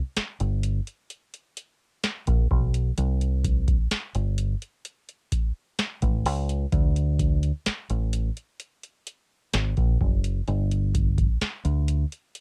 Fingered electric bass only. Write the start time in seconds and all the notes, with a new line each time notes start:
0.17 muted fingered electric bass stroke
0.40 G1
2.28 A#1
2.51 B1
2.98 C2
3.92 muted fingered electric bass stroke
4.15 G1
6.03 A1
6.26 C#2
6.73 D2
7.67 muted fingered electric bass stroke
7.90 A1
9.54 G#1
9.78 A#1
10.01 F#1
10.48 G1
11.42 muted fingered electric bass stroke
11.65 D2